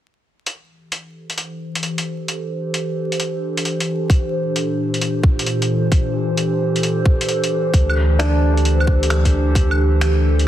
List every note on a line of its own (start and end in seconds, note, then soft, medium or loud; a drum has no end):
0.46 10.48 E3 medium
0.46 closed hi-hat soft
0.64 10.48 G4 medium
0.64 10.48 A4 medium
0.81 10.48 D4 medium
0.88 10.48 C5 medium
0.88 closed hi-hat medium
1.30 closed hi-hat soft
1.38 closed hi-hat medium
1.75 closed hi-hat soft
1.83 closed hi-hat soft
1.98 closed hi-hat medium
2.28 closed hi-hat medium
2.74 closed hi-hat medium
3.12 closed hi-hat soft
3.20 closed hi-hat medium
3.57 closed hi-hat soft
3.65 closed hi-hat soft
3.80 closed hi-hat medium
4.10 7.74 A#2 medium
4.10 kick loud
4.10 closed hi-hat medium
4.56 closed hi-hat medium
4.94 closed hi-hat soft
5.01 closed hi-hat medium
5.23 kick loud
5.39 closed hi-hat medium
5.46 closed hi-hat soft
5.62 closed hi-hat medium
5.92 kick loud
5.92 closed hi-hat soft
6.37 closed hi-hat medium
6.76 closed hi-hat soft
6.83 closed hi-hat medium
7.05 kick loud
7.21 closed hi-hat medium
7.29 closed hi-hat medium
7.44 closed hi-hat medium
7.74 10.48 D2 medium
7.74 kick loud
7.74 closed hi-hat medium
7.90 claves soft
8.19 9.54 D4 medium
8.19 finger snap loud
8.19 closed hi-hat medium
8.57 closed hi-hat soft
8.65 closed hi-hat medium
8.80 claves medium
8.87 kick loud
9.03 closed hi-hat medium
9.10 finger snap medium
9.10 closed hi-hat medium
9.25 kick medium
9.25 closed hi-hat medium
9.55 kick loud
9.55 closed hi-hat medium
9.71 claves medium
10.01 finger snap loud
10.01 closed hi-hat medium
10.39 closed hi-hat soft